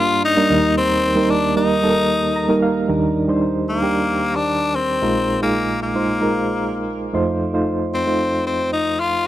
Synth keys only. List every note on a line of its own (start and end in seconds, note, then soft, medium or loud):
0.00 0.47 G2 medium
0.00 0.36 G3 medium
0.00 0.37 A#3 medium
0.00 0.37 D4 medium
0.00 0.37 A#4 loud
0.36 0.48 G3 medium
0.36 0.49 A#3 medium
0.36 0.50 D4 medium
0.36 0.49 A#4 medium
0.50 2.58 D#2 medium
0.50 2.59 D#3 medium
0.50 1.08 G3 medium
0.50 1.09 A#3 medium
0.50 1.09 D#4 medium
0.50 1.09 A#4 medium
1.15 1.51 G3 medium
1.15 1.51 A#3 medium
1.15 1.52 D#4 medium
1.15 1.52 A#4 medium
1.56 1.80 G3 medium
1.56 1.80 A#3 medium
1.56 1.80 D#4 medium
1.56 1.80 A#4 medium
1.82 2.41 G3 medium
1.82 2.42 A#3 medium
1.82 2.42 D#4 medium
1.82 1.90 A4 medium
1.90 2.45 A#4 medium
2.36 2.61 A#5 medium
2.48 2.84 G3 medium
2.48 2.84 A#3 medium
2.48 2.84 D#4 medium
2.48 2.85 A#4 medium
2.62 2.87 F5 medium
2.88 4.97 D#2 medium
2.88 4.97 D#3 medium
2.88 3.24 G3 medium
2.88 3.24 D4 medium
2.88 3.24 D#4 medium
2.88 3.24 A#4 medium
3.28 3.75 G3 medium
3.28 3.76 D4 medium
3.28 3.76 D#4 medium
3.28 3.76 C5 medium
3.82 4.76 G3 medium
3.82 4.76 D4 medium
3.82 4.76 G4 medium
3.82 4.76 A#4 medium
5.02 7.10 A#1 medium
5.02 7.10 A#2 medium
5.02 5.37 G#3 medium
5.02 5.37 D#4 medium
5.02 5.37 F4 medium
5.02 5.37 A#4 medium
5.42 5.88 G#3 medium
5.42 5.88 D#4 medium
5.42 5.89 F4 medium
5.42 5.89 G#4 medium
5.94 6.18 G#3 medium
5.94 6.18 D#4 medium
5.94 6.18 F4 medium
5.94 6.19 C5 medium
6.21 7.03 G#3 medium
6.21 7.03 D#4 medium
6.21 7.03 F4 medium
6.21 7.04 A#4 medium
7.13 9.22 F2 medium
7.13 7.49 A3 medium
7.13 7.49 D#4 medium
7.13 7.49 F4 medium
7.13 7.49 C5 medium
7.53 8.00 A3 medium
7.53 8.00 D#4 medium
7.53 8.01 F4 medium
7.53 8.01 C5 medium
8.06 9.00 A3 medium
8.06 9.01 D#4 medium
8.06 9.01 F4 medium
8.06 9.01 C5 medium